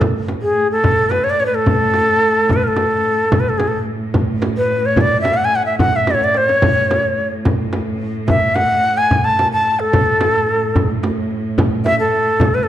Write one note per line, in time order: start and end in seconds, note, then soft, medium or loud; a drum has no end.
0.00 3.30 A2 medium
0.00 tombak dum medium
0.00 frame drum medium
0.28 tombak tek medium
0.28 frame drum medium
0.42 0.68 G#4 medium
0.71 1.12 A4 medium
0.84 frame drum medium
0.84 tombak dum medium
1.10 1.26 B4 medium
1.10 tombak tek medium
1.10 frame drum medium
1.24 1.31 C#5 medium
1.30 1.41 D5 medium
1.40 1.45 C#5 medium
1.40 tombak ka soft
1.46 1.56 B4 medium
1.55 2.54 A4 medium
1.66 frame drum medium
1.66 tombak dum medium
1.94 tombak tek medium
1.94 frame drum medium
2.49 2.65 B4 medium
2.49 frame drum medium
2.49 tombak dum medium
2.64 3.41 A4 medium
2.64 2.69 A#4 medium
2.77 tombak tek medium
2.77 frame drum medium
3.05 tombak ka soft
3.31 6.61 A2 medium
3.31 frame drum medium
3.31 tombak dum medium
3.40 3.50 B4 medium
3.49 3.59 A4 medium
3.58 3.69 G#4 medium
3.58 tombak tek medium
3.58 frame drum medium
3.68 3.77 A4 medium
4.14 frame drum medium
4.14 tombak dum medium
4.42 tombak tek medium
4.42 frame drum medium
4.57 4.87 B4 medium
4.70 tombak ka soft
4.86 5.02 C#5 medium
4.96 tombak dum medium
4.96 frame drum medium
5.01 5.20 D5 medium
5.21 5.35 E5 medium
5.21 tombak tek medium
5.21 frame drum medium
5.34 5.46 F#5 medium
5.45 5.57 G#5 medium
5.52 5.65 F#5 medium
5.52 tombak ka soft
5.66 5.76 E5 medium
5.78 5.98 F#5 medium
5.78 tombak dum medium
5.78 frame drum medium
5.96 6.12 E5 medium
6.07 6.16 D5 medium
6.07 tombak tek medium
6.07 frame drum medium
6.14 6.25 C#5 medium
6.21 6.39 D5 medium
6.21 tombak ka medium
6.34 7.29 C#5 medium
6.34 tombak tek medium
6.49 tombak ka medium
6.62 9.91 A2 medium
6.62 frame drum medium
6.62 tombak dum medium
6.91 tombak tek medium
6.91 frame drum medium
7.45 frame drum medium
7.45 tombak dum medium
7.73 tombak tek medium
7.73 frame drum medium
8.02 tombak ka soft
8.28 8.57 E5 medium
8.28 frame drum medium
8.28 tombak dum medium
8.55 8.99 F#5 loud
8.55 tombak tek medium
8.55 frame drum medium
8.97 9.26 G#5 medium
9.11 tombak dum medium
9.11 frame drum medium
9.25 9.51 A5 medium
9.39 tombak tek medium
9.39 frame drum medium
9.52 9.81 A5 medium
9.67 tombak ka soft
9.80 10.88 A4 medium
9.92 12.68 A2 medium
9.92 frame drum medium
9.92 tombak dum medium
10.21 tombak tek medium
10.21 frame drum medium
10.76 tombak dum loud
10.76 frame drum medium
11.03 tombak tek medium
11.03 frame drum medium
11.31 tombak ka soft
11.58 tombak dum medium
11.58 frame drum medium
11.85 11.98 E5 loud
11.85 tombak tek medium
11.85 frame drum medium
12.00 12.56 A4 medium
12.40 tombak dum loud
12.40 frame drum medium
12.55 12.65 B4 medium
12.64 12.68 A4 medium